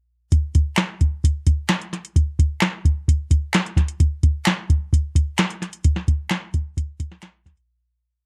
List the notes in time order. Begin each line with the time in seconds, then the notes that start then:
0.32 kick, closed hi-hat
0.55 kick, closed hi-hat
0.76 finger snap, snare, closed hi-hat
1.01 kick, closed hi-hat
1.24 kick, closed hi-hat
1.47 kick, closed hi-hat
1.69 finger snap, snare, closed hi-hat
1.81 closed hi-hat
1.93 snare, closed hi-hat
2.05 closed hi-hat
2.16 kick, closed hi-hat
2.39 kick, closed hi-hat
2.60 finger snap, snare, closed hi-hat
2.85 kick, closed hi-hat
3.08 kick, closed hi-hat
3.31 kick, closed hi-hat
3.53 finger snap, snare, closed hi-hat
3.66 closed hi-hat
3.77 kick, snare, closed hi-hat
3.88 closed hi-hat
4.00 kick, closed hi-hat
4.23 kick, closed hi-hat
4.45 finger snap, snare, closed hi-hat
4.70 kick, closed hi-hat
4.93 kick, closed hi-hat
5.15 kick, closed hi-hat
5.38 finger snap, snare, closed hi-hat
5.50 closed hi-hat
5.62 snare, closed hi-hat
5.73 closed hi-hat
5.84 kick, closed hi-hat
5.96 snare
6.08 kick, closed hi-hat
6.29 finger snap, snare, closed hi-hat
6.54 kick, closed hi-hat
6.77 kick, closed hi-hat
7.00 kick, closed hi-hat
7.12 snare
7.22 finger snap, snare, closed hi-hat
7.46 kick, snare, closed hi-hat
7.57 closed hi-hat